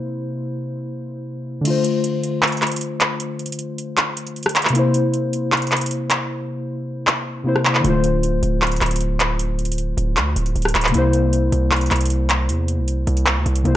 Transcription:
Already playing: synth keys C3 A#3 E4 C5
1.61 synth keys D3 A3
1.65 synth keys F4, closed hi-hat, crash
1.70 synth keys C5
1.84 closed hi-hat
2.04 closed hi-hat
2.23 closed hi-hat
2.43 clap, closed hi-hat
2.47 closed hi-hat
2.52 closed hi-hat
2.57 closed hi-hat
2.62 clap, closed hi-hat
2.67 closed hi-hat
2.72 closed hi-hat
2.76 closed hi-hat
2.81 closed hi-hat
3.00 clap, closed hi-hat
3.20 closed hi-hat
3.39 closed hi-hat
3.46 closed hi-hat
3.52 closed hi-hat
3.59 closed hi-hat
3.78 closed hi-hat
3.97 clap, closed hi-hat
4.17 closed hi-hat
4.27 closed hi-hat
4.36 closed hi-hat
4.43 cross-stick, closed hi-hat
4.49 closed hi-hat
4.56 clap, closed hi-hat, open hi-hat
4.62 clap, closed hi-hat
4.68 synth keys C3, closed hi-hat
4.73 synth keys A#3 E4, closed hi-hat
4.79 synth keys C5
4.94 closed hi-hat
5.14 closed hi-hat
5.33 closed hi-hat
5.52 clap, closed hi-hat
5.57 closed hi-hat
5.62 closed hi-hat
5.67 closed hi-hat
5.72 clap, closed hi-hat
5.77 closed hi-hat
5.81 closed hi-hat
5.86 closed hi-hat
5.91 closed hi-hat
6.10 clap, closed hi-hat
7.07 clap
7.44 synth keys C3 A#3 E4
7.48 synth keys C5
7.56 cross-stick
7.65 clap
7.75 clap
7.80 synth keys D3 A3
7.84 808-style bass D1, synth keys F4, closed hi-hat
7.90 synth keys C5
8.04 closed hi-hat
8.23 closed hi-hat
8.43 808-style bass D1, closed hi-hat
8.62 clap, closed hi-hat
8.67 closed hi-hat
8.72 closed hi-hat
8.76 closed hi-hat
8.81 808-style bass D1, clap, closed hi-hat
8.86 closed hi-hat
8.91 closed hi-hat
8.96 closed hi-hat
9.01 closed hi-hat
9.20 clap, closed hi-hat
9.39 closed hi-hat
9.59 closed hi-hat
9.65 closed hi-hat
9.72 closed hi-hat
9.78 closed hi-hat
9.97 808-style bass D1, closed hi-hat
10.17 808-style bass D2, clap, closed hi-hat
10.36 808-style bass D1, closed hi-hat
10.46 closed hi-hat
10.55 808-style bass D1, closed hi-hat
10.62 cross-stick, closed hi-hat
10.68 closed hi-hat
10.75 808-style bass D1, clap, closed hi-hat, open hi-hat
10.81 clap, closed hi-hat
10.88 synth keys C3, closed hi-hat
10.92 808-style bass C2, synth keys A#3 E4, closed hi-hat
10.98 synth keys C5
11.13 closed hi-hat
11.33 closed hi-hat
11.52 808-style bass C2, closed hi-hat
11.71 clap, closed hi-hat
11.76 closed hi-hat
11.81 closed hi-hat
11.86 closed hi-hat
11.91 808-style bass C2, clap, closed hi-hat
11.96 closed hi-hat
12.01 closed hi-hat
12.05 closed hi-hat
12.10 closed hi-hat
12.30 clap, closed hi-hat
12.49 808-style bass E2, closed hi-hat
12.68 closed hi-hat
12.78 808-style bass C2
12.88 closed hi-hat
13.07 808-style bass C2, closed hi-hat
13.17 closed hi-hat
13.26 clap, closed hi-hat
13.36 808-style bass D2
13.46 808-style bass C2, closed hi-hat
13.56 closed hi-hat
13.63 808-style bass C2, synth keys C3 A#3 E4, closed hi-hat
13.68 synth keys C5

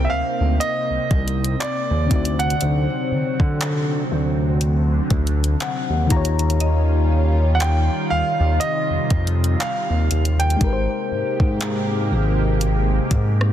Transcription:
Already playing: fm electric piano C3 C4 D#4 A#4 C5 D5 G5, analog synth pad C3 A#3 C4
0.05 grand piano E5
0.10 analog synth bass D2, grand piano F5
0.41 analog synth bass D2
0.60 grand piano D#5, closed hi-hat
0.90 analog synth bass C2
1.11 analog synth bass C2, kick, closed hi-hat
1.28 closed hi-hat
1.44 closed hi-hat
1.60 grand piano D5, clap, closed hi-hat
1.91 analog synth bass D#2
2.06 fm electric piano D3 C4
2.11 analog synth bass D2, analog synth pad F#3, fm electric piano D#4 F#4, kick, closed hi-hat
2.16 fm electric piano D5
2.25 closed hi-hat
2.39 grand piano F#5, closed hi-hat
2.50 closed hi-hat
2.61 analog synth bass D2, closed hi-hat
3.11 analog synth bass D3
3.40 analog synth bass D3, kick
3.61 clap, closed hi-hat
4.10 analog synth bass D2, analog synth pad D3
4.61 closed hi-hat
5.10 analog synth bass D2, kick, closed hi-hat
5.27 closed hi-hat
5.44 closed hi-hat
5.60 fm electric piano F#5, clap, closed hi-hat
5.90 analog synth bass D#2
6.07 fm electric piano D#3 D#4, analog synth pad D#3 G3 C#4 F4, kick, closed hi-hat
6.11 analog synth bass D#2, fm electric piano F4 G4 A#5
6.16 fm electric piano C#5
6.25 closed hi-hat
6.39 closed hi-hat
6.50 closed hi-hat
6.60 synth pluck D#5, closed hi-hat
7.55 grand piano F#5
7.60 grand piano G5, synth pluck G5, clap, closed hi-hat
8.10 analog synth bass D#2, analog synth pad C3, grand piano F5
8.40 analog synth bass D#2
8.60 grand piano D#5, closed hi-hat
8.90 analog synth bass F2
9.10 analog synth bass F2, kick, closed hi-hat
9.27 closed hi-hat
9.44 closed hi-hat
9.60 grand piano F5, clap, closed hi-hat
9.90 analog synth bass D#2
10.11 analog synth bass D#2, closed hi-hat
10.25 closed hi-hat
10.39 grand piano G5, closed hi-hat
10.50 closed hi-hat
10.57 fm electric piano G#3 D#4
10.61 analog synth bass G#1, analog synth pad C3 G#3 A#3 G4, fm electric piano G4 A#4, kick, closed hi-hat
10.66 fm electric piano B4
10.73 fm electric piano C5
11.11 analog synth bass G#2
11.40 analog synth bass G#2, kick
11.61 synth pluck A#5, clap, closed hi-hat
12.11 analog synth bass G#1
12.61 closed hi-hat
13.11 analog synth bass G#2, kick, closed hi-hat
13.41 cross-stick

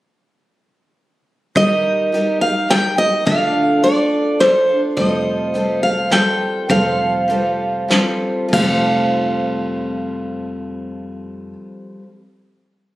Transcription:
1.55 twelve-string acoustic guitar D#3 G3 D#4 G4 A#4, steel-string acoustic guitar D#5, kick, closed hi-hat
2.12 twelve-string acoustic guitar G3 D#4 G4 A#4, closed hi-hat
2.41 steel-string acoustic guitar F5
2.69 twelve-string acoustic guitar G3 D#4 G4 A#4, steel-string acoustic guitar G5, snare, closed hi-hat
2.98 steel-string acoustic guitar D#5
3.25 twelve-string acoustic guitar D3 A3 D4 F4 A4, steel-string acoustic guitar F5, kick, closed hi-hat
3.83 twelve-string acoustic guitar A3 D4 F4 A4, steel-string acoustic guitar D5, closed hi-hat
4.40 twelve-string acoustic guitar A3 D4 F4 A4, steel-string acoustic guitar C5, snare, closed hi-hat
4.68 twelve-string acoustic guitar D4 F4 A4
4.97 upright bass F1, twelve-string acoustic guitar F3 G3 C4 F4 A4, steel-string acoustic guitar D#5, kick, closed hi-hat
5.54 twelve-string acoustic guitar G3 C4 F4 A4, closed hi-hat
5.83 steel-string acoustic guitar F5
6.10 twelve-string acoustic guitar G3 C4 F4 A4, steel-string acoustic guitar G5, snare, closed hi-hat
6.69 upright bass F1, twelve-string acoustic guitar F3 G3 C4 F4 A4, steel-string acoustic guitar F5, kick, closed hi-hat
7.28 twelve-string acoustic guitar G3 C4 F4 A4, closed hi-hat
7.88 twelve-string acoustic guitar G3 C4 F4 A4, snare, closed hi-hat
8.49 twelve-string acoustic guitar F3
8.53 upright bass F1, twelve-string acoustic guitar G3 C4, steel-string acoustic guitar F5, kick, crash
8.59 twelve-string acoustic guitar F4 A4

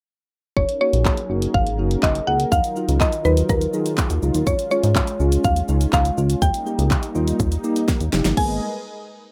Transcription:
0.57 analog synth bass F#1, analog synth pad F#3 C#4 D#4 G#4 A#4, synth pluck C#5, kick
0.69 closed hi-hat
0.81 tine electric piano A#3 D#4 F#4, synth pluck C#5
0.93 analog synth bass A#1, closed hi-hat
1.05 kick, clap
1.17 closed hi-hat
1.30 analog synth bass F#1, tine electric piano A#3 D#4 F#4
1.42 closed hi-hat
1.54 analog synth bass G#1, synth pluck F5, kick
1.67 closed hi-hat
1.78 analog synth bass F#1, tine electric piano A#3 D#4 F#4
1.91 closed hi-hat
2.03 analog synth bass F#1, synth pluck D#5, kick, clap
2.15 closed hi-hat
2.27 analog synth bass C#2, tine electric piano A#3 D#4 G#4, synth pluck F#5
2.40 closed hi-hat
2.52 analog synth bass D#2, analog synth pad D#3 F#3 F4, synth pluck F5, kick, shaker
2.64 closed hi-hat, shaker
2.76 tine electric piano F#3 D#4 F4, shaker
2.88 analog synth bass C#2, closed hi-hat, shaker
3.01 synth pluck D#5, kick, clap, shaker
3.12 closed hi-hat, shaker
3.25 analog synth bass D#2, tine electric piano F#3 D#4 F4, synth pluck B4, shaker
3.37 closed hi-hat, shaker
3.49 analog synth bass D#2, synth pluck A#4, kick, shaker
3.61 closed hi-hat, shaker
3.73 tine electric piano F#3 D#4 G#4, shaker
3.86 closed hi-hat, shaker
3.98 kick, clap, shaker
4.10 analog synth bass D#2, closed hi-hat, shaker
4.22 analog synth bass C#2, tine electric piano F#3 D#4 F4, shaker
4.34 analog synth bass D#2, closed hi-hat, shaker
4.47 analog synth bass F2, analog synth pad G#3 C#4, synth pluck C#5, kick, shaker
4.59 closed hi-hat, shaker
4.71 tine electric piano G#3 C#4 F4, synth pluck C#5, shaker
4.83 analog synth bass G#2, closed hi-hat, shaker
4.96 kick, clap, shaker
5.07 closed hi-hat, shaker
5.20 analog synth bass C#2, tine electric piano G#3 C#4 F4, shaker
5.32 closed hi-hat, shaker
5.44 analog synth bass D#2, synth pluck F5, kick, shaker
5.56 closed hi-hat, shaker
5.68 analog synth bass C#2, tine electric piano G#3 C#4 D#4, shaker
5.81 closed hi-hat, shaker
5.93 analog synth bass C#2, synth pluck F5, kick, clap, shaker
6.05 closed hi-hat, shaker
6.17 analog synth bass C#2, tine electric piano G#3 C#4 F4, shaker
6.30 closed hi-hat, shaker
6.42 analog synth bass D#2, analog synth pad G3 A#3 D#4, synth pluck G5, kick, shaker
6.54 closed hi-hat, shaker
6.66 tine electric piano A#3 D#4 G4, shaker
6.79 analog synth bass C#2, closed hi-hat, shaker
6.91 kick, clap, shaker
7.03 closed hi-hat, shaker
7.15 analog synth bass D#2, tine electric piano A#3 D#4 F4, shaker
7.28 closed hi-hat, shaker
7.40 analog synth bass D#2, kick, shaker
7.52 closed hi-hat, shaker
7.64 tine electric piano A#3 D#4 G4, shaker
7.76 closed hi-hat, shaker
7.88 kick, snare, shaker
8.01 analog synth bass D#2, closed hi-hat, shaker
8.13 analog synth bass F1, tine electric piano A#3 D#4 G4, snare, shaker
8.25 analog synth bass G1, snare, closed hi-hat, shaker
8.37 analog synth bass G#1, analog synth pad G#3 G#4 A#4 B4 D#5, tine electric piano A#3 B3 G#4, synth pluck G#5, kick, crash

